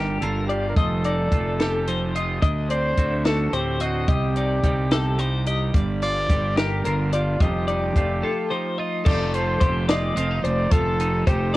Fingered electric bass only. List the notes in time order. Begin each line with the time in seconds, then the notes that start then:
Already playing: G1
0.22 G1
0.77 F1
1.32 F1
2.42 D2
2.98 D2
3.52 D2
4.08 C2
4.64 C2
5.74 G1
6.30 G1
6.85 G1
7.40 F1
7.96 F1
9.06 F1
9.61 F1
10.16 F1
10.44 F1
10.72 F1
11.27 F1